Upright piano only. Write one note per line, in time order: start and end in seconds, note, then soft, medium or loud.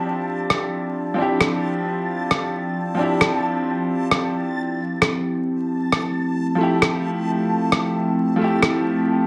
0.00 1.13 F3 medium
0.00 1.14 C4 medium
0.00 1.16 D4 medium
0.00 1.17 E4 medium
0.00 1.18 G4 medium
1.14 2.93 F3 medium
1.14 2.95 C4 medium
1.14 2.96 D4 medium
1.20 2.97 E4 medium
1.20 2.99 G4 medium
2.95 4.75 F3 medium
2.95 4.76 C4 medium
2.99 4.77 D4 medium
2.99 4.78 E4 medium
3.03 4.79 G4 medium
6.55 8.35 F3 medium
6.55 8.37 A3 medium
6.61 8.39 E4 medium
6.61 8.40 G4 medium
8.36 9.27 F3 medium
8.36 9.27 A3 medium
8.42 9.27 E4 medium
8.42 9.27 G4 medium